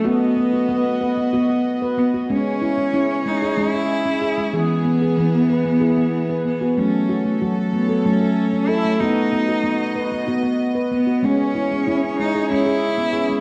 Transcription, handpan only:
X:1
M:7/8
L:1/16
Q:1/4=94
K:Bmix
V:1 name="Handpan"
F2 B, F z2 B B, F B,2 B B, F | G,2 E G, E2 G, G G, G2 C G G, | G2 B, G B,2 B B, G B,2 B B, F | A,2 F A, F2 A, A A, A2 C A A, |
F2 B, F B,2 B B, F B,2 B B, F | G,2 E G, E2 G, G G, G2 B, G G, |]
V:2 name="Handpan"
B,4 B,4 B,6 | C4 C4 C6 | E,4 E,4 E6 | F,4 F,4 F,6 |
B,4 z4 B,6 | C4 C4 C6 |]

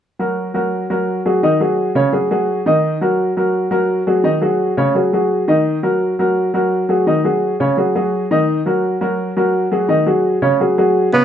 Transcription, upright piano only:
X:1
M:4/4
L:1/8
Q:1/4=170
K:Ebm
V:1 name="Upright piano"
z [G,GB]2 [G,GB]2 [G,GB]2 [G,GA] | [E,Ee] [G,GA]2 [D,Dd] [G,GA] [G,GA]2 [E,Ee]- | [E,Ee] [G,GB]2 [G,GB]2 [G,GB]2 [G,GA] | [E,Ee] [G,GA]2 [D,Dd] [G,GA] [G,GA]2 [E,Ee]- |
[E,Ee] [G,GB]2 [G,GB]2 [G,GB]2 [G,GA] | [E,Ee] [G,GA]2 [D,Dd] [G,GA] [G,GA]2 [E,Ee]- | [E,Ee] [G,GB]2 [G,GB]2 [G,GB]2 [G,GA] | [E,Ee] [G,GA]2 [D,Dd] [G,GA] [G,GA]2 [D,Dd] |]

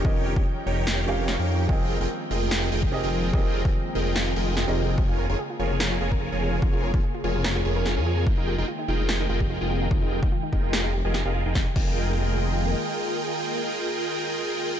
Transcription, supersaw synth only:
X:1
M:4/4
L:1/16
Q:"Swing 16ths" 1/4=146
K:Fm
V:1 name="Supersaw synth"
[EGB]3 [Gg] z2 [EGBdg]4 [EGBdg]3 [EGBdg]3 | z3 [FABeg] z2 [FABeg]4 [FABeg]3 [FABeg]3 | [Aeg]3 F z2 [FABeg]4 [FABeg]3 [FABeg]3 | A3 [FABda] z2 [FABda]4 [FABda]3 [FABda]3 |
A3 [FB] z2 [FABda]4 [FABda]3 [FABda]3 | [FABeg]3 [FABeg] z2 [FABeg]4 [FABeg]3 [FABeg]3 | [FAe]3 z3 [FABeg]4 z [FABea]2 [FABef]2 [FABeg] | [Ag] z [FABeg]12- [FABeg]2- |
[FABeg]16 |]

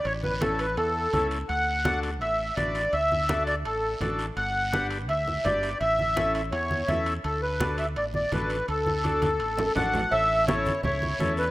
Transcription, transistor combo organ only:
X:1
M:4/4
L:1/8
Q:1/4=167
K:D
V:1 name="Transistor combo organ"
z2 [CEA] z3 [CEA] z | z2 [DFA] z3 [DFB] z | z2 [DFA] z3 [DFA] z | z2 [DGB] z3 [DGB] z |
z2 [CEA] z3 [CEA] z | z2 [DFA] z3 [DFA] z | z2 [DFA] z3 [DFA] z | z2 [CEA] z3 [CEA] z |]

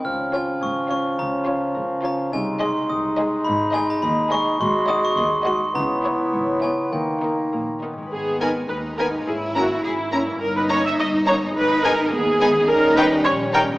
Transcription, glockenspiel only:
X:1
M:2/4
L:1/16
Q:1/4=105
K:Ab
V:1 name="Glockenspiel"
f'2 a2 d'2 d'2 | b6 b2 | a2 c'2 e'2 z2 | [K:G#m] b2 g a b2 c'2 |
^b2 d' c' b2 b2 | a6 g2 | =g6 z2 | z8 |
z8 | z8 | z8 | z8 |]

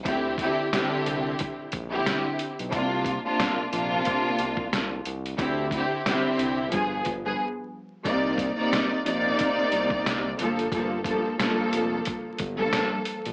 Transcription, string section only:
X:1
M:4/4
L:1/16
Q:"Swing 16ths" 1/4=90
K:Dphr
V:1 name="String section"
[D,C=EG]2 [D,CEG]2 [D,CEG]6 z [D,CEG]4 z | [C,B,DF]3 [C,B,DF]3 [C,B,DF]6- [C,B,DF] z3 | [D,C=EG]2 [D,CEG]2 [D,CEG]4 [G,,F,=B,_A]2 z [G,,F,B,A] z4 | [K:Cm] [C,B,Ed]3 [C,B,Ed]3 [C,B,Ed]6- [C,B,Ed] z [G,,F,B,=A]2 |
[G,,F,B,=A]2 [G,,F,B,A]2 [G,,F,B,A]6 z [G,,F,B,A]4 z |]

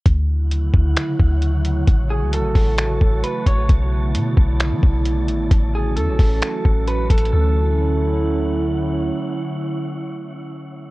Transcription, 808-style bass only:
X:1
M:4/4
L:1/16
Q:1/4=132
K:D
V:1 name="808-style bass" clef=bass
D,,6 D,,2 z2 D,,6 | A,,,3 C,,3/2 A,,,3/2 A,,,4 A,,,2 z2 A,,,2 | B,,,4 B,,2 B,,,3 F, B,,,4 A,,,2 | A,,,4 E,, A,,, A,,,2 z2 A,,,4 A,,,2 |
D,,16 | z16 |]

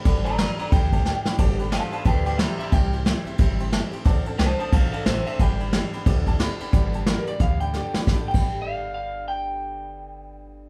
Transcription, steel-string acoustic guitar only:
X:1
M:4/4
L:1/16
Q:"Swing" 1/4=180
K:G
V:1 name="Steel-string acoustic guitar"
[G,,D,G,B,DG]2 [G,B,DG]2 [DG]2 [G,B,DG]2 [G,,D,G,B,DG]2 [G,B,DG]2 [G,B,DG]2 [G,B,DG]2 | [G,,D,G,B,DG]2 [G,B,DG]2 [G,DG]2 [G,B,DG]2 [G,,D,G,B,DG]2 [G,B,DG]2 [G,B,DG]2 [G,B,DG]2 | [C,G,CEG]2 [CEG]2 [G,CEG]2 [CEG]2 [C,G,CEG]2 [CEG]2 [G,CEG]2 [CEG]2 | [D,F,CDA]2 [CDA]2 [F,CDA]2 [CDA]2 [D,F,CDA]2 [CDA]2 [F,CDA]2 [CDA]2 |
[G,,D,G,B,DG]2 [G,B,DG]2 [G,B,DG]2 [G,B,DG]2 [G,,D,G,B,DG]2 [G,B,DG]2 [G,B,DG]2 [G,B,DG]2 | [G,,D,G,B,DG]2 [G,B,DG]2 [G,,D,G,B,DG]2 [G,B,DG]2 [G,B,DG]2 [G,B,DG]2 [G,,D,G,B,DG]2 [G,B,DG]2 | [G,,D,G,B,DG] z2 [G,,D,G,B,DG]12- [G,,D,G,B,DG]- | [G,,D,G,B,DG]16 |]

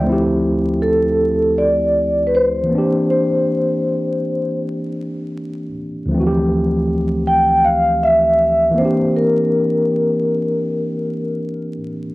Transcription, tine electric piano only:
X:1
M:4/4
L:1/8
Q:"Swing 16ths" 1/4=79
K:Dm
V:1 name="Tine electric piano"
[D,,F,A,CEG]6- [D,,F,A,CEG] [E,B,CDG]- | [E,B,CDG]6- [E,B,CDG] z | [D,,E,F,A,C^FG]6- [D,,E,=F,A,C^FG] [E,B,CDG]- | [E,B,CDG]6- [E,B,CDG] z |]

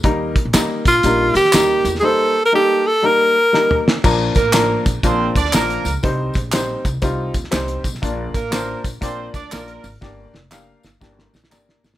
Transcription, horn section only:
X:1
M:4/4
L:1/16
Q:"Swing" 1/4=120
K:Bb
V:1 name="Horn section"
z16 | z16 | z2 [B,B]4 z2 [Cc]2 [Dd]2 [B,B]3 z | z16 |
z2 [B,B]4 z2 [Cc]2 [Dd]2 [B,B]3 z | z16 |]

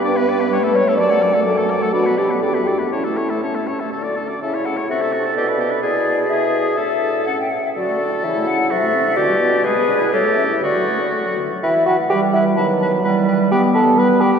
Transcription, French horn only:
X:1
M:2/4
L:1/16
Q:1/4=126
K:D
V:1 name="French horn"
B6 c2 | d4 A4 | F2 G2 A2 G2 | E4 z4 |
D F D F C E C E | =C D C D B, D B, D | E4 E4 | D4 C2 z2 |
F, A, D F E, A, C E | F, A, =C D D, G, B, D | ^G, B, D E =G, A, C E | D, F, A, D A, F, D, F, |
[K:Em] E,4 E,4 | ^D,4 E,4 | G,4 G,4 |]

